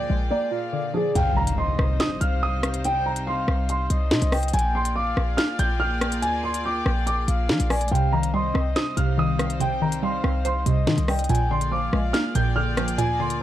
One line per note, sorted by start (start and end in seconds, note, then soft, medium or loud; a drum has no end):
0.00 0.50 A#2 medium
0.00 0.72 D3 medium
0.00 0.93 F3 medium
0.00 1.12 A#3 medium
0.00 1.12 F4 medium
0.00 1.12 G#4 medium
0.00 0.29 D5 medium
0.00 1.12 D5 medium
0.00 0.48 G5 medium
0.10 0.30 A#1 loud
0.10 1.15 G#3 medium
0.31 1.16 A#3 medium
0.31 0.90 D5 medium
0.51 1.15 A#2 medium
0.51 0.92 F5 medium
0.73 1.15 D3 loud
0.94 1.15 F3 medium
0.94 1.13 G#4 medium
0.94 1.14 D5 medium
1.15 1.76 C2 loud
1.15 4.50 C3 medium
1.15 4.50 G3 medium
1.15 4.50 D#4 medium
1.15 4.50 C5 medium
1.15 1.55 F5 loud
1.15 1.34 G5 loud
1.15 closed hi-hat medium
1.15 impact medium
1.37 1.55 A#5 medium
1.47 closed hi-hat medium
1.58 2.17 D#5 medium
1.58 1.97 C6 medium
1.79 1.99 C2 loud
1.79 cross-stick medium
2.00 2.19 D#6 medium
2.00 snare loud
2.00 closed hi-hat medium
2.21 3.44 C2 loud
2.21 2.81 F5 medium
2.21 2.39 F6 medium
2.21 closed hi-hat medium
2.43 2.82 D#6 medium
2.63 cross-stick loud
2.63 closed hi-hat medium
2.74 closed hi-hat medium
2.84 3.24 G5 loud
2.84 3.03 G5 loud
2.84 closed hi-hat medium
3.06 3.24 A#5 medium
3.16 closed hi-hat medium
3.27 3.86 F5 medium
3.27 3.67 C6 medium
3.48 3.88 C2 loud
3.48 cross-stick medium
3.69 4.29 C6 medium
3.69 closed hi-hat medium
3.90 4.13 C2 loud
3.90 4.50 D#5 medium
3.90 closed hi-hat medium
4.11 4.21 C3 loud
4.11 snare loud
4.22 4.52 C2 loud
4.22 closed hi-hat medium
4.32 4.51 G5 medium
4.32 cross-stick loud
4.32 open hi-hat medium
4.43 closed hi-hat medium
4.48 closed hi-hat medium
4.53 5.14 A#1 loud
4.53 7.88 A#3 medium
4.53 7.88 F4 medium
4.53 7.88 G#4 medium
4.53 7.88 D5 medium
4.53 4.93 G5 loud
4.53 4.72 G#5 loud
4.53 closed hi-hat medium
4.59 closed hi-hat medium
4.75 4.93 C6 medium
4.85 closed hi-hat medium
4.96 5.55 F5 loud
4.96 5.35 D6 medium
5.17 5.37 A#1 loud
5.17 cross-stick medium
5.37 5.56 F6 medium
5.37 snare loud
5.37 closed hi-hat medium
5.59 6.24 A#1 loud
5.59 6.19 G5 medium
5.59 5.78 G6 medium
5.59 closed hi-hat medium
5.80 6.20 F6 medium
6.01 cross-stick loud
6.01 closed hi-hat medium
6.12 closed hi-hat medium
6.22 6.83 D2 loud
6.22 6.41 G#5 medium
6.22 6.62 G#5 loud
6.22 closed hi-hat medium
6.44 6.62 C6 medium
6.54 closed hi-hat medium
6.65 7.24 G5 medium
6.65 7.05 D6 medium
6.86 7.26 A#1 loud
6.86 cross-stick medium
7.07 7.66 D6 medium
7.07 closed hi-hat medium
7.28 7.51 A#1 loud
7.28 7.68 F5 medium
7.28 closed hi-hat medium
7.49 7.59 F3 medium
7.49 snare loud
7.60 7.90 A#1 loud
7.60 closed hi-hat medium
7.70 7.91 D5 medium
7.70 7.89 G#5 medium
7.70 cross-stick loud
7.70 open hi-hat medium
7.81 closed hi-hat medium
7.88 8.52 C2 loud
7.88 11.26 C3 medium
7.88 8.96 C3 medium
7.88 11.26 G3 medium
7.88 11.26 D#4 medium
7.88 11.26 C5 medium
7.88 8.31 F5 loud
7.88 8.10 G5 medium
7.88 closed hi-hat medium
7.95 closed hi-hat medium
8.12 9.17 D#3 medium
8.12 8.31 A#5 medium
8.23 closed hi-hat medium
8.34 9.37 G3 medium
8.34 8.93 D#5 loud
8.34 8.73 C6 medium
8.54 8.75 C2 loud
8.54 9.60 C4 loud
8.54 cross-stick medium
8.76 9.82 C5 medium
8.76 8.95 D#6 medium
8.76 snare loud
8.76 closed hi-hat medium
8.97 10.20 C2 loud
8.97 9.59 C3 medium
8.97 9.57 F5 medium
8.97 9.16 F6 medium
8.97 closed hi-hat medium
9.18 9.81 D#3 loud
9.18 9.58 D#6 medium
9.39 10.01 G3 medium
9.39 cross-stick loud
9.39 closed hi-hat medium
9.50 closed hi-hat medium
9.60 10.65 C3 medium
9.60 10.00 G5 loud
9.60 9.79 G5 loud
9.60 closed hi-hat medium
9.82 10.86 D#3 medium
9.82 10.00 A#5 medium
9.92 closed hi-hat medium
10.03 11.07 G3 medium
10.03 10.62 F5 medium
10.03 10.43 C6 medium
10.24 10.64 C2 loud
10.24 11.29 C4 loud
10.24 cross-stick medium
10.45 11.29 C5 medium
10.45 11.05 C6 medium
10.45 closed hi-hat medium
10.66 10.89 C2 loud
10.66 11.30 C3 medium
10.66 11.26 D#5 medium
10.66 closed hi-hat medium
10.87 10.97 C3 loud
10.87 11.29 D#3 medium
10.87 snare loud
10.98 11.28 C2 loud
10.98 closed hi-hat medium
11.08 11.29 G3 medium
11.08 11.27 G5 medium
11.08 cross-stick loud
11.08 open hi-hat medium
11.19 closed hi-hat medium
11.24 closed hi-hat medium
11.29 11.90 A#1 loud
11.29 12.34 A#2 medium
11.29 13.43 A#3 medium
11.29 13.43 F4 medium
11.29 13.43 G#4 medium
11.29 13.43 D5 medium
11.29 11.69 G5 loud
11.29 11.48 G#5 loud
11.29 closed hi-hat medium
11.35 closed hi-hat medium
11.51 12.55 D3 medium
11.51 11.69 C6 medium
11.61 closed hi-hat medium
11.72 12.76 F3 medium
11.72 12.31 F5 loud
11.72 12.11 D6 medium
11.93 12.13 A#1 loud
11.93 12.99 G#3 loud
11.93 cross-stick medium
12.13 13.20 A#3 medium
12.13 12.32 F6 medium
12.13 snare loud
12.13 closed hi-hat medium
12.35 13.00 A#1 loud
12.35 12.97 A#2 medium
12.35 12.95 G5 medium
12.35 12.54 G6 medium
12.35 closed hi-hat medium
12.56 13.19 D3 medium
12.56 12.96 F6 medium
12.77 13.40 F3 medium
12.77 cross-stick loud
12.77 closed hi-hat medium
12.88 closed hi-hat medium
12.98 13.43 D2 loud
12.98 13.43 A#2 medium
12.98 13.17 G#5 loud
12.98 13.38 G#5 loud
12.98 closed hi-hat medium
13.20 13.43 D3 medium
13.20 13.38 C6 medium
13.30 closed hi-hat medium